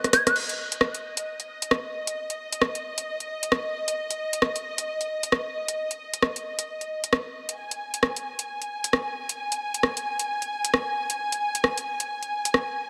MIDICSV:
0, 0, Header, 1, 4, 480
1, 0, Start_track
1, 0, Tempo, 451128
1, 384, Time_signature, 4, 2, 24, 8
1, 13721, End_track
2, 0, Start_track
2, 0, Title_t, "Flute"
2, 0, Program_c, 0, 73
2, 142, Note_on_c, 0, 92, 89
2, 259, Note_off_c, 0, 92, 0
2, 287, Note_on_c, 0, 90, 93
2, 383, Note_off_c, 0, 90, 0
2, 13721, End_track
3, 0, Start_track
3, 0, Title_t, "Violin section"
3, 0, Program_c, 1, 48
3, 0, Note_on_c, 1, 75, 84
3, 374, Note_off_c, 1, 75, 0
3, 387, Note_on_c, 1, 75, 77
3, 8064, Note_on_c, 1, 80, 78
3, 8077, Note_off_c, 1, 75, 0
3, 13721, Note_off_c, 1, 80, 0
3, 13721, End_track
4, 0, Start_track
4, 0, Title_t, "Drums"
4, 46, Note_on_c, 9, 37, 56
4, 46, Note_on_c, 9, 42, 41
4, 140, Note_off_c, 9, 37, 0
4, 140, Note_on_c, 9, 37, 82
4, 140, Note_on_c, 9, 46, 121
4, 153, Note_off_c, 9, 42, 0
4, 246, Note_off_c, 9, 37, 0
4, 246, Note_off_c, 9, 46, 0
4, 285, Note_on_c, 9, 37, 82
4, 285, Note_on_c, 9, 42, 64
4, 381, Note_on_c, 9, 49, 76
4, 391, Note_off_c, 9, 37, 0
4, 391, Note_off_c, 9, 42, 0
4, 487, Note_off_c, 9, 49, 0
4, 525, Note_on_c, 9, 42, 48
4, 632, Note_off_c, 9, 42, 0
4, 765, Note_on_c, 9, 42, 57
4, 860, Note_on_c, 9, 37, 98
4, 872, Note_off_c, 9, 42, 0
4, 967, Note_off_c, 9, 37, 0
4, 1005, Note_on_c, 9, 42, 43
4, 1112, Note_off_c, 9, 42, 0
4, 1246, Note_on_c, 9, 42, 59
4, 1352, Note_off_c, 9, 42, 0
4, 1486, Note_on_c, 9, 42, 31
4, 1592, Note_off_c, 9, 42, 0
4, 1725, Note_on_c, 9, 42, 57
4, 1821, Note_on_c, 9, 37, 106
4, 1832, Note_off_c, 9, 42, 0
4, 1928, Note_off_c, 9, 37, 0
4, 2206, Note_on_c, 9, 42, 55
4, 2312, Note_off_c, 9, 42, 0
4, 2447, Note_on_c, 9, 42, 44
4, 2553, Note_off_c, 9, 42, 0
4, 2687, Note_on_c, 9, 42, 54
4, 2782, Note_on_c, 9, 37, 104
4, 2793, Note_off_c, 9, 42, 0
4, 2889, Note_off_c, 9, 37, 0
4, 2928, Note_on_c, 9, 42, 43
4, 3034, Note_off_c, 9, 42, 0
4, 3168, Note_on_c, 9, 42, 56
4, 3275, Note_off_c, 9, 42, 0
4, 3408, Note_on_c, 9, 42, 32
4, 3514, Note_off_c, 9, 42, 0
4, 3648, Note_on_c, 9, 42, 56
4, 3743, Note_on_c, 9, 37, 113
4, 3755, Note_off_c, 9, 42, 0
4, 3849, Note_off_c, 9, 37, 0
4, 4127, Note_on_c, 9, 42, 59
4, 4234, Note_off_c, 9, 42, 0
4, 4368, Note_on_c, 9, 42, 47
4, 4474, Note_off_c, 9, 42, 0
4, 4608, Note_on_c, 9, 42, 57
4, 4703, Note_on_c, 9, 37, 108
4, 4715, Note_off_c, 9, 42, 0
4, 4809, Note_off_c, 9, 37, 0
4, 4848, Note_on_c, 9, 42, 43
4, 4954, Note_off_c, 9, 42, 0
4, 5088, Note_on_c, 9, 42, 60
4, 5194, Note_off_c, 9, 42, 0
4, 5328, Note_on_c, 9, 42, 31
4, 5434, Note_off_c, 9, 42, 0
4, 5568, Note_on_c, 9, 42, 57
4, 5664, Note_on_c, 9, 37, 103
4, 5674, Note_off_c, 9, 42, 0
4, 5770, Note_off_c, 9, 37, 0
4, 6048, Note_on_c, 9, 42, 57
4, 6154, Note_off_c, 9, 42, 0
4, 6286, Note_on_c, 9, 42, 47
4, 6393, Note_off_c, 9, 42, 0
4, 6528, Note_on_c, 9, 42, 56
4, 6623, Note_on_c, 9, 37, 106
4, 6634, Note_off_c, 9, 42, 0
4, 6729, Note_off_c, 9, 37, 0
4, 6768, Note_on_c, 9, 42, 45
4, 6874, Note_off_c, 9, 42, 0
4, 7008, Note_on_c, 9, 42, 60
4, 7114, Note_off_c, 9, 42, 0
4, 7248, Note_on_c, 9, 42, 31
4, 7354, Note_off_c, 9, 42, 0
4, 7488, Note_on_c, 9, 42, 57
4, 7582, Note_on_c, 9, 37, 109
4, 7594, Note_off_c, 9, 42, 0
4, 7688, Note_off_c, 9, 37, 0
4, 7968, Note_on_c, 9, 42, 61
4, 8074, Note_off_c, 9, 42, 0
4, 8207, Note_on_c, 9, 42, 47
4, 8314, Note_off_c, 9, 42, 0
4, 8446, Note_on_c, 9, 42, 59
4, 8541, Note_on_c, 9, 37, 106
4, 8553, Note_off_c, 9, 42, 0
4, 8647, Note_off_c, 9, 37, 0
4, 8687, Note_on_c, 9, 42, 45
4, 8793, Note_off_c, 9, 42, 0
4, 8926, Note_on_c, 9, 42, 61
4, 9033, Note_off_c, 9, 42, 0
4, 9167, Note_on_c, 9, 42, 34
4, 9274, Note_off_c, 9, 42, 0
4, 9408, Note_on_c, 9, 42, 62
4, 9503, Note_on_c, 9, 37, 105
4, 9514, Note_off_c, 9, 42, 0
4, 9610, Note_off_c, 9, 37, 0
4, 9888, Note_on_c, 9, 42, 61
4, 9994, Note_off_c, 9, 42, 0
4, 10128, Note_on_c, 9, 42, 50
4, 10234, Note_off_c, 9, 42, 0
4, 10367, Note_on_c, 9, 42, 60
4, 10462, Note_on_c, 9, 37, 103
4, 10474, Note_off_c, 9, 42, 0
4, 10568, Note_off_c, 9, 37, 0
4, 10607, Note_on_c, 9, 42, 49
4, 10713, Note_off_c, 9, 42, 0
4, 10847, Note_on_c, 9, 42, 62
4, 10953, Note_off_c, 9, 42, 0
4, 11087, Note_on_c, 9, 42, 36
4, 11193, Note_off_c, 9, 42, 0
4, 11327, Note_on_c, 9, 42, 66
4, 11423, Note_on_c, 9, 37, 107
4, 11433, Note_off_c, 9, 42, 0
4, 11529, Note_off_c, 9, 37, 0
4, 11808, Note_on_c, 9, 42, 63
4, 11915, Note_off_c, 9, 42, 0
4, 12048, Note_on_c, 9, 42, 49
4, 12155, Note_off_c, 9, 42, 0
4, 12288, Note_on_c, 9, 42, 62
4, 12383, Note_on_c, 9, 37, 101
4, 12395, Note_off_c, 9, 42, 0
4, 12490, Note_off_c, 9, 37, 0
4, 12529, Note_on_c, 9, 42, 48
4, 12635, Note_off_c, 9, 42, 0
4, 12769, Note_on_c, 9, 42, 65
4, 12875, Note_off_c, 9, 42, 0
4, 13008, Note_on_c, 9, 42, 35
4, 13114, Note_off_c, 9, 42, 0
4, 13249, Note_on_c, 9, 42, 62
4, 13344, Note_on_c, 9, 37, 95
4, 13356, Note_off_c, 9, 42, 0
4, 13450, Note_off_c, 9, 37, 0
4, 13721, End_track
0, 0, End_of_file